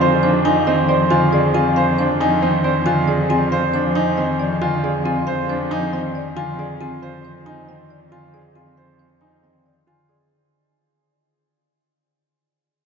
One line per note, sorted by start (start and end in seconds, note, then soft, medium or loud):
0.00 10.18 F2 medium
0.00 0.30 C5 medium
0.00 0.30 F5 medium
0.23 0.52 F3 medium
0.23 0.52 D4 medium
0.23 0.52 C5 medium
0.45 0.74 D#4 medium
0.45 0.74 G#5 medium
0.67 0.96 D#3 medium
0.67 0.96 C4 medium
0.67 0.96 D#5 medium
0.89 1.18 C5 medium
0.89 1.17 D5 medium
1.11 1.39 D3 medium
1.11 1.39 F4 medium
1.11 1.39 G#5 medium
1.33 1.61 G#4 medium
1.33 1.61 D5 medium
1.54 1.83 C4 medium
1.54 1.83 F4 medium
1.54 1.83 G#5 medium
1.76 2.05 C5 medium
1.76 2.05 F5 medium
1.99 2.27 F3 medium
1.99 2.27 D4 medium
1.99 2.27 C5 medium
2.20 2.49 D#4 medium
2.20 2.49 G#5 loud
2.42 2.71 D#3 medium
2.42 2.71 C4 medium
2.42 2.71 D#5 medium
2.64 2.93 C5 medium
2.64 2.93 D5 medium
2.86 3.15 D3 medium
2.86 3.15 F4 medium
2.86 3.15 G#5 loud
3.08 3.37 G#4 medium
3.08 3.36 D5 medium
3.30 3.58 C4 medium
3.30 3.58 F4 medium
3.30 3.59 G#5 medium
3.52 3.80 C5 medium
3.52 3.80 F5 medium
3.74 4.02 F3 medium
3.74 4.02 D4 medium
3.74 4.02 C5 medium
3.95 4.24 D#4 medium
3.95 4.24 G#5 medium
4.17 4.46 D#3 medium
4.17 4.46 C4 medium
4.17 4.46 D#5 medium
4.40 4.68 D5 medium
4.61 4.90 D3 medium
4.61 4.90 F4 medium
4.61 4.90 G#5 loud
4.83 5.12 G#4 medium
4.83 5.12 D5 medium
5.05 5.34 C4 medium
5.05 5.34 F4 medium
5.05 5.34 G#5 medium
5.27 5.56 C5 medium
5.27 5.55 F5 medium
5.49 5.78 F3 medium
5.49 5.77 D4 medium
5.49 5.78 C5 medium
5.71 5.99 D#4 medium
5.71 6.00 G#5 medium
5.93 6.21 D#3 medium
5.93 6.21 C4 medium
5.93 6.21 D#5 medium
6.15 6.43 D5 medium
6.36 6.65 D3 medium
6.36 6.65 F4 medium
6.36 6.65 G#5 medium
6.59 6.87 G#4 medium
6.59 6.87 D5 medium
6.80 7.09 C4 medium
6.80 7.09 F4 medium
6.80 7.09 G#5 medium
7.02 7.31 C5 medium
7.02 7.31 F5 medium
7.25 7.53 C5 medium
7.46 7.74 D#4 medium
7.46 7.75 G#5 medium
7.68 7.96 D#3 medium
7.68 7.96 C4 medium
7.68 7.97 D#5 medium
7.90 8.19 D5 medium
8.11 8.40 D3 medium
8.11 8.40 F4 medium
8.11 8.40 G#5 medium
8.34 8.62 G#4 medium
8.34 8.62 D5 medium
8.55 8.84 C4 medium
8.55 8.84 F4 medium
8.55 8.84 G#5 medium
8.77 9.06 C5 medium
8.77 9.06 F5 medium
8.99 9.28 C5 soft
9.21 9.50 D#4 medium
9.21 9.50 G#5 medium
9.43 9.72 D#3 soft
9.43 9.72 C4 soft
9.43 9.72 D#5 soft
9.66 9.94 D5 soft
9.87 10.15 D3 medium
9.87 10.15 F4 medium
9.87 10.16 G#5 medium
10.09 10.37 G#4 soft
10.09 10.37 D5 soft